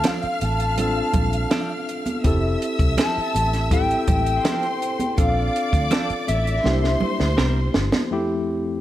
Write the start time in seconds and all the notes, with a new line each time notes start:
Already playing: C4 D4 F4 A4 F5 F6
0.04 F3 C4 D4 A4 F5, snare, closed hi-hat, high conga
0.23 muted fingered electric bass stroke, closed hi-hat
0.41 A1 A5, closed hi-hat, muted conga
0.60 closed hi-hat
0.78 C4 D4 F4 A4, closed hi-hat, low conga
1.13 A#1, kick, closed hi-hat, low conga
1.33 closed hi-hat
1.51 F3 C4 D4 A4, snare, closed hi-hat, high conga
1.89 closed hi-hat
2.06 closed hi-hat, high conga
2.24 F1 C4 E4 G4 A4 E5 E6, kick, closed hi-hat, muted conga
2.62 closed hi-hat
2.79 C2, kick, closed hi-hat
2.98 F3 C4 E4 A4 A5, snare, closed hi-hat, high conga
3.18 muted fingered electric bass stroke
3.35 A1, closed hi-hat, muted conga
3.53 snare, closed hi-hat
3.71 C4 E4 G4 A4 G5, kick, closed hi-hat, low conga
3.91 closed hi-hat
4.08 A1, kick, closed hi-hat, muted conga, low conga
4.26 closed hi-hat
4.44 F3 C4 E4 A4 C5 C6, snare, closed hi-hat, high conga
4.63 closed hi-hat
4.82 closed hi-hat
5.00 closed hi-hat, high conga
5.16 A#1 C4 D4 F4 A4 D5 F5 D6, kick, closed hi-hat, muted conga
5.56 closed hi-hat
5.73 D2, kick, closed hi-hat
5.91 F3 C4 D4 A4, snare, closed hi-hat, high conga
6.10 muted fingered electric bass stroke, closed hi-hat
6.28 A1 E5, closed hi-hat, muted conga
6.47 closed hi-hat
6.64 C2 A#3 D4 E4 G4 C5 C6, snare, low conga
6.84 snare
7.00 muted fingered electric bass stroke, muted conga, low conga
7.20 D2, snare
7.37 C2 G3 C4 E4 A#4, snare, high conga
7.74 G1, snare
7.92 snare, high conga
8.11 F2 A3 C4 E4 G4